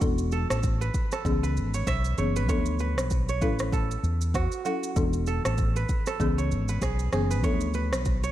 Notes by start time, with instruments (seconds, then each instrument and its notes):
Already playing: kora F#4
0.01 fingered electric bass E1, marimba E3 B3 D4 A4, kick, shaker
0.18 shaker
0.32 kora A4, shaker
0.50 fingered electric bass A1, kora A4, cross-stick, shaker
0.63 kick, shaker
0.81 kora B4, shaker
0.94 kick, shaker
1.12 kora A4, cross-stick, shaker
1.25 fingered electric bass C#2, marimba E3 B3 C#4 G#4, kick, shaker
1.43 kora B4, shaker
1.56 fingered electric bass G#1, shaker
1.74 kora C#5, shaker
1.87 fingered electric bass B1, kora E5, kick, cross-stick, shaker
2.05 shaker
2.18 fingered electric bass F#1, marimba E3 B3 C#4 G#4, kora C#5, shaker
2.36 kora B4, shaker
2.49 fingered electric bass D2, marimba F3 B3 D4 A4, kora C#5, kick, shaker
2.66 shaker
2.79 kora B4, shaker
2.98 fingered electric bass B1, cross-stick, shaker
3.10 kick, shaker
3.29 kora C#5, shaker
3.41 fingered electric bass A1, marimba F#3 C#4 E4 A4, kora B4, kick, shaker
3.59 cross-stick, shaker
3.72 kora A4, kick, shaker
3.91 shaker
4.03 fingered electric bass E2, shaker
4.21 shaker
4.34 kora F#4, kick, cross-stick, shaker
4.52 shaker
4.65 marimba F#3 C#4 E4 A4, kora F#4, shaker
4.84 shaker
4.96 fingered electric bass E1, marimba E3 B3 D4 A4, kick, shaker
5.13 shaker
5.27 kora A4, shaker
5.45 fingered electric bass A1, kora A4, cross-stick, shaker
5.58 kick, shaker
5.76 kora B4, shaker
5.89 kick, shaker
6.06 kora A4, cross-stick, shaker
6.20 fingered electric bass C#2, marimba E3 B3 C#4 G#4, kick, shaker
6.38 kora C#5, shaker
6.51 fingered electric bass G#1, shaker
6.68 kora B4, shaker
6.82 fingered electric bass B1, kora G#4, kick, cross-stick, shaker
6.99 shaker
7.13 fingered electric bass F#1, marimba E3 B3 C#4 G#4, kora G#4, cross-stick, shaker
7.31 kora B4, shaker
7.43 fingered electric bass D2, marimba F3 B3 D4 A4, kora C#5, kick, shaker
7.61 shaker
7.74 kora B4, shaker
7.93 fingered electric bass B1, cross-stick, shaker
8.05 kick, shaker
8.24 kora C#5, shaker